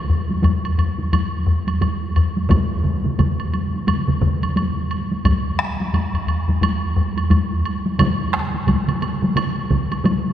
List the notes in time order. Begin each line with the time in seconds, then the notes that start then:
0.10 taiko low-mid
0.30 taiko high
0.42 taiko low-mid, taiko high, high woodblock
0.65 high woodblock
0.78 taiko low-mid, high woodblock
0.98 taiko high
1.13 taiko low-mid, taiko high, high woodblock
1.47 taiko low-mid
1.67 taiko high, high woodblock
1.81 taiko low-mid, taiko high, high woodblock
2.16 taiko low-mid, high woodblock
2.37 taiko high
2.50 taiko, taiko low-mid, taiko mid, taiko high, high woodblock
2.84 taiko low-mid, taiko mid
3.05 taiko low-mid, taiko mid, taiko high
3.19 taiko, taiko low-mid, taiko mid, taiko high, high woodblock
3.40 high woodblock
3.54 taiko high, high woodblock
3.74 taiko high
3.87 taiko low-mid, taiko mid, taiko high, high woodblock
4.07 taiko low-mid, taiko mid
4.21 taiko, taiko low-mid, taiko mid
4.43 taiko high, high woodblock
4.56 taiko high, high woodblock
4.91 high woodblock
5.12 taiko high
5.25 taiko, taiko low-mid, taiko high, high woodblock
5.59 taiko rim
5.80 taiko high
5.93 taiko low-mid, taiko high, high woodblock
6.14 taiko low-mid, high woodblock
6.27 taiko low-mid, high woodblock
6.48 taiko low-mid, taiko high
6.61 taiko low-mid, taiko high, high woodblock
6.96 taiko low-mid
7.17 taiko high, high woodblock
7.31 taiko low-mid, taiko high, high woodblock
7.65 high woodblock
7.86 taiko high
7.99 taiko, taiko mid, taiko high, high woodblock
8.33 taiko rim
8.54 taiko high
8.67 taiko, taiko mid, taiko high, high woodblock
8.88 taiko mid, high woodblock
9.02 taiko mid, high woodblock
9.22 taiko mid, taiko high
9.36 taiko mid, taiko high, high woodblock
9.71 taiko, taiko mid
9.91 taiko high, high woodblock
10.04 taiko mid, taiko high, high woodblock